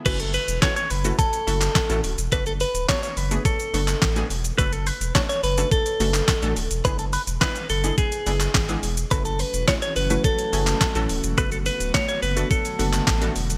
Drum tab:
CC |x---------------|----------------|----------------|----------------|
HH |xxoxxxoxxxoxxxox|xxoxxxoxxxoxxxox|xxoxxxoxxxoxxxox|xxoxxxoxxxoxxxox|
SH |xxxxxxxxxxxxxxxx|xxxxxxxxxxxxxxxx|xxxxxxxxxxxxxxxx|xxxxxxxxxxxxxxxx|
CP |----x------xx---|----x------xx---|----x------xx---|----x------xx---|
SD |----o-------o---|----o-------o---|----o-------o---|----o-------o---|
BD |o---o---o---o---|o---o---o---o---|o---o---o---o---|o---o---o---o---|

CC |----------------|----------------|
HH |xxoxxxoxxxoxxxox|xxoxxxoxxxoxxxox|
SH |xxxxxxxxxxxxxxxx|xxxxxxxxxxxxxxxx|
CP |----x------xx---|----x------xx---|
SD |----o-------o---|----o-------o---|
BD |o---o---o---o---|o---o---o---o---|